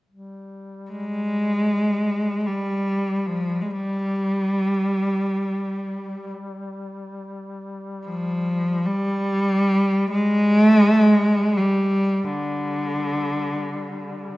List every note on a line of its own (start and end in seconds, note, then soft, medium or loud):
0.10 14.37 G3 soft
0.91 2.48 G#3 medium
2.46 3.16 G3 medium
3.16 3.27 G3 soft
3.26 3.63 F3 medium
3.61 3.72 G#3 soft
3.71 6.30 G3 medium
8.06 8.87 F3 medium
8.85 10.10 G3 medium
10.10 10.61 G#3 medium
10.61 10.75 A3 medium
10.75 10.90 G#3 medium
10.90 11.04 A3 medium
11.04 11.59 G#3 medium
11.58 12.25 G3 medium
12.23 14.32 D3 medium